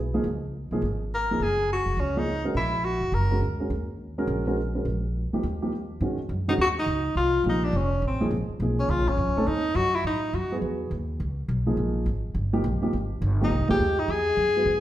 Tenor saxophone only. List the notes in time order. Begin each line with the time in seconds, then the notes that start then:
1.15 A#4
1.43 G#4
1.73 F#4
2.00 C#4
2.18 D#4
2.57 E4
2.84 F#4
3.14 A#4
6.49 D#4
6.61 F#4
6.79 D#4
7.17 F4
7.49 D#4
7.64 D4
7.77 C#4
8.07 C4
8.80 C#4
8.90 F4
9.09 C#4
9.47 D#4
9.76 F#4
9.95 E4
10.07 D#4
10.35 F#4
13.44 D#4
13.71 G4
13.99 D#4
14.11 G#4